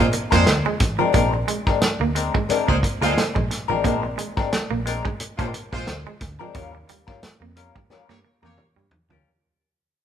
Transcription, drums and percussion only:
0.13 closed hi-hat medium
0.32 kick medium
0.32 snare soft
0.32 closed hi-hat medium
0.46 snare loud
0.46 closed hi-hat medium
0.80 kick loud
0.80 snare soft
0.80 closed hi-hat medium
1.14 kick loud
1.14 closed hi-hat medium
1.48 closed hi-hat medium
1.67 kick loud
1.67 snare soft
1.81 snare loud
1.81 closed hi-hat medium
2.16 closed hi-hat medium
2.35 kick medium
2.50 closed hi-hat medium
2.69 kick loud
2.83 kick medium
2.83 closed hi-hat medium
3.03 snare soft
3.03 closed hi-hat medium
3.18 snare loud
3.18 closed hi-hat medium
3.36 kick medium
3.51 snare soft
3.51 closed hi-hat medium
3.85 kick loud
3.85 closed hi-hat medium
4.18 closed hi-hat medium
4.37 kick loud
4.37 snare soft
4.52 snare loud
4.52 closed hi-hat medium
4.87 closed hi-hat medium
5.05 kick medium
5.20 closed hi-hat medium
5.39 kick loud
5.39 closed hi-hat soft
5.54 closed hi-hat medium
5.73 kick loud
5.73 snare soft
5.87 snare loud
5.87 closed hi-hat medium
6.21 kick loud
6.21 snare soft
6.21 closed hi-hat medium
6.54 kick loud
6.54 closed hi-hat medium
6.89 closed hi-hat medium
7.08 kick medium
7.08 snare soft
7.23 snare loud
7.23 closed hi-hat medium
7.56 closed hi-hat medium
7.76 kick medium
7.90 snare medium
8.09 snare medium
8.43 high tom medium
8.58 mid tom medium
8.91 floor tom loud
9.10 floor tom medium

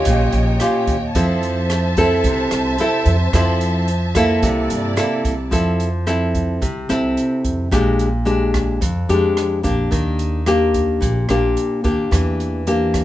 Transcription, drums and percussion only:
0.05 kick medium
0.05 closed hi-hat medium
0.32 closed hi-hat soft
0.60 cross-stick medium
0.60 closed hi-hat soft
0.87 kick medium
0.87 closed hi-hat soft
1.15 kick medium
1.15 closed hi-hat medium
1.43 closed hi-hat soft
1.70 cross-stick medium
1.70 closed hi-hat soft
1.97 kick medium
1.97 closed hi-hat soft
2.24 kick medium
2.24 closed hi-hat medium
2.51 cross-stick medium
2.51 closed hi-hat soft
2.78 closed hi-hat soft
3.06 kick medium
3.06 closed hi-hat soft
3.33 kick medium
3.33 cross-stick medium
3.33 closed hi-hat medium
3.61 closed hi-hat soft
3.88 closed hi-hat soft
4.15 kick medium
4.15 cross-stick medium
4.15 closed hi-hat soft
4.43 kick medium
4.43 closed hi-hat medium
4.70 closed hi-hat soft
4.97 cross-stick medium
4.97 closed hi-hat soft
5.25 kick soft
5.25 closed hi-hat soft
5.52 kick medium
5.52 closed hi-hat medium
5.80 closed hi-hat soft
6.07 cross-stick soft
6.07 closed hi-hat soft
6.35 kick medium
6.35 closed hi-hat soft
6.62 kick medium
6.62 closed hi-hat medium
6.90 cross-stick medium
6.90 closed hi-hat soft
7.17 closed hi-hat soft
7.44 kick soft
7.44 closed hi-hat soft
7.72 kick medium
7.72 cross-stick medium
7.72 closed hi-hat medium
7.99 closed hi-hat soft
8.27 closed hi-hat soft
8.54 kick soft
8.54 cross-stick medium
8.54 closed hi-hat soft
8.82 kick medium
8.82 closed hi-hat medium
9.09 closed hi-hat soft
9.37 cross-stick medium
9.37 closed hi-hat soft
9.64 kick medium
9.64 closed hi-hat soft
9.92 kick medium
9.92 closed hi-hat soft
10.19 closed hi-hat soft
10.46 cross-stick medium
10.46 closed hi-hat soft
10.74 kick soft
10.74 closed hi-hat soft
11.02 kick medium
11.02 closed hi-hat medium
11.29 cross-stick medium
11.29 closed hi-hat soft
11.57 closed hi-hat soft
11.84 kick medium
11.84 closed hi-hat soft
12.12 kick medium
12.12 cross-stick soft
12.12 closed hi-hat medium
12.40 closed hi-hat soft
12.67 closed hi-hat soft
12.94 kick soft
12.94 cross-stick soft
12.94 closed hi-hat soft

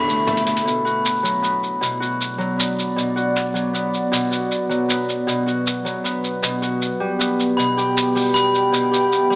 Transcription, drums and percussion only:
0.09 shaker soft
0.27 closed hi-hat medium
0.27 mid tom medium
0.37 closed hi-hat medium
0.47 closed hi-hat medium
0.57 closed hi-hat medium
0.67 shaker soft
0.86 shaker soft
1.05 shaker medium
1.25 shaker soft
1.44 shaker soft
1.63 shaker soft
1.83 shaker medium
2.02 shaker soft
2.21 shaker soft
2.40 shaker soft
2.60 shaker medium
2.79 shaker soft
2.98 shaker soft
3.17 shaker soft
3.36 shaker medium
3.55 shaker soft
3.75 shaker soft
3.94 shaker soft
4.13 shaker medium
4.32 shaker soft
4.51 shaker soft
4.71 shaker soft
4.90 shaker medium
5.09 shaker soft
5.28 shaker soft
5.48 shaker soft
5.67 shaker medium
5.86 shaker soft
6.05 shaker soft
6.24 shaker soft
6.43 shaker medium
6.63 shaker soft
6.82 shaker soft
7.20 shaker medium
7.40 shaker soft
7.59 shaker soft
7.78 shaker soft
7.97 shaker medium
8.16 shaker soft
8.18 shaker soft
8.21 shaker soft
8.23 shaker soft
8.26 shaker soft
8.29 shaker soft
8.31 shaker soft
8.33 shaker soft
8.35 shaker soft
8.55 shaker soft
8.74 shaker medium
8.93 shaker soft
9.12 shaker soft
9.32 shaker soft

